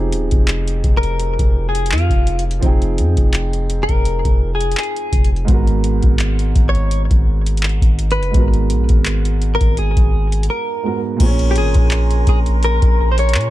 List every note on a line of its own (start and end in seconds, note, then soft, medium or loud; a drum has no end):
0.00 0.15 F1 loud
0.00 2.57 F3 medium
0.00 2.58 C4 medium
0.00 2.59 D#4 medium
0.00 2.60 G4 medium
0.00 2.62 G#4 medium
0.13 0.31 D#1 medium
0.13 closed hi-hat medium
0.31 0.82 F1 loud
0.31 kick medium
0.31 closed hi-hat soft
0.48 clap loud
0.48 closed hi-hat medium
0.68 closed hi-hat medium
0.84 1.37 F1 loud
0.84 kick medium
0.84 closed hi-hat medium
0.97 1.68 A#4 loud
1.03 closed hi-hat soft
1.20 closed hi-hat medium
1.39 1.93 F1 loud
1.39 kick medium
1.39 closed hi-hat medium
1.69 1.93 G#4 medium
1.75 closed hi-hat medium
1.86 closed hi-hat soft
1.92 2.10 F2 medium
1.92 2.43 F4 medium
1.92 clap loud
1.98 closed hi-hat soft
2.10 2.61 F1 medium
2.10 kick medium
2.10 closed hi-hat soft
2.27 closed hi-hat medium
2.39 closed hi-hat medium
2.51 closed hi-hat soft
2.59 3.01 F1 loud
2.59 5.43 F3 medium
2.59 5.44 C4 medium
2.59 kick loud
2.59 closed hi-hat medium
2.64 5.45 D#4 medium
2.64 5.46 G5 medium
2.68 5.47 G#4 medium
2.82 closed hi-hat soft
2.98 3.17 F2 loud
2.98 closed hi-hat medium
3.17 3.87 F1 loud
3.17 kick medium
3.17 closed hi-hat soft
3.34 clap loud
3.34 closed hi-hat medium
3.53 closed hi-hat soft
3.70 closed hi-hat medium
3.83 4.50 A#4 loud
3.89 4.24 F1 loud
3.89 kick medium
3.89 closed hi-hat soft
4.05 closed hi-hat medium
4.25 4.75 F1 medium
4.25 kick medium
4.25 closed hi-hat medium
4.55 4.77 G#4 medium
4.61 closed hi-hat medium
4.71 closed hi-hat medium
4.77 5.29 G#4 medium
4.77 clap loud
4.83 closed hi-hat soft
4.96 closed hi-hat soft
5.13 5.47 F1 loud
5.13 kick medium
5.13 closed hi-hat medium
5.24 closed hi-hat medium
5.36 closed hi-hat soft
5.45 6.01 G#1 loud
5.45 8.28 G#2 medium
5.45 8.30 G#3 medium
5.45 kick loud
5.45 closed hi-hat medium
5.49 8.31 B3 medium
5.49 8.32 F#4 medium
5.54 8.33 A#4 medium
5.67 closed hi-hat soft
5.84 closed hi-hat medium
6.03 6.54 G#1 loud
6.03 kick medium
6.03 closed hi-hat soft
6.19 clap loud
6.19 closed hi-hat medium
6.39 closed hi-hat medium
6.56 7.09 G#1 loud
6.56 kick medium
6.56 closed hi-hat medium
6.69 7.02 C#5 loud
6.75 closed hi-hat soft
6.91 closed hi-hat medium
7.11 7.79 G#1 medium
7.11 kick loud
7.11 closed hi-hat medium
7.46 closed hi-hat medium
7.57 closed hi-hat medium
7.63 clap loud
7.69 closed hi-hat soft
7.82 8.20 G#1 loud
7.82 kick medium
7.82 closed hi-hat soft
7.99 closed hi-hat medium
8.11 8.44 B4 loud
8.11 closed hi-hat medium
8.18 8.34 F#1 medium
8.23 closed hi-hat soft
8.31 8.72 G#1 loud
8.31 10.78 G#2 medium
8.31 10.80 G#3 medium
8.31 kick loud
8.31 closed hi-hat medium
8.35 10.81 B3 medium
8.35 10.82 F#4 medium
8.40 10.83 A#4 medium
8.54 closed hi-hat soft
8.70 8.89 A#1 loud
8.70 closed hi-hat medium
8.89 9.58 G#1 loud
8.89 kick medium
8.89 closed hi-hat soft
9.06 clap loud
9.06 closed hi-hat medium
9.25 closed hi-hat medium
9.42 closed hi-hat medium
9.55 9.76 A#4 loud
9.61 9.95 G#1 medium
9.61 kick medium
9.61 closed hi-hat soft
9.77 10.45 G#4 medium
9.77 closed hi-hat medium
9.97 10.49 G#1 loud
9.97 kick medium
9.97 closed hi-hat medium
10.32 closed hi-hat medium
10.43 closed hi-hat medium
10.50 11.00 A#4 medium
10.83 11.19 G#2 soft
10.83 11.20 G#3 soft
10.83 11.20 B3 soft
10.83 11.21 F#4 soft
10.87 11.22 A#4 medium
11.17 11.58 A#1 loud
11.17 13.50 A#2 medium
11.17 13.50 A#3 medium
11.17 13.50 A#4 medium
11.17 13.50 G#5 medium
11.17 13.50 A#5 medium
11.17 13.50 C6 medium
11.17 kick loud
11.17 closed hi-hat medium
11.17 crash medium
11.21 11.28 C4 medium
11.21 13.50 G#4 medium
11.26 13.50 C#4 medium
11.26 13.50 C#5 medium
11.39 closed hi-hat soft
11.51 11.57 G4 medium
11.56 11.74 G#1 loud
11.56 12.28 G#4 medium
11.56 closed hi-hat medium
11.74 12.25 A#1 loud
11.74 kick medium
11.74 closed hi-hat soft
11.91 clap loud
11.91 closed hi-hat medium
12.11 closed hi-hat medium
12.27 12.80 A#1 loud
12.27 12.38 G#4 medium
12.27 kick medium
12.27 closed hi-hat medium
12.46 closed hi-hat soft
12.63 13.11 A#4 medium
12.63 closed hi-hat medium
12.82 13.36 A#1 loud
12.82 kick loud
12.82 closed hi-hat medium
13.12 13.18 C5 medium
13.18 13.50 C#5 medium
13.18 closed hi-hat medium
13.29 closed hi-hat medium
13.35 13.50 A#2 medium
13.35 clap loud
13.41 closed hi-hat soft